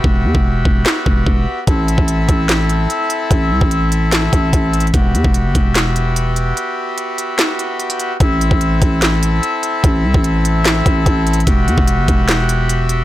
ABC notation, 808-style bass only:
X:1
M:4/4
L:1/16
Q:1/4=147
K:Ador
V:1 name="808-style bass" clef=bass
E,,,2 E,, E,,,3 E,,,2 z2 E,,,2 E,,,2 z2 | A,,,3 A,,,3 A,,,6 z4 | A,,,2 C,, A,,,6- A,,, A,,,2 A,,,4 | E,,,2 E,, E,,,2 F,,, E,,,8- E,,,2 |
z16 | A,,,3 A,,,3 A,,,6 z4 | A,,,2 C,, A,,,6- A,,, A,,,2 A,,,4 | E,,,2 E,, E,,,2 F,,, E,,,8- E,,,2 |]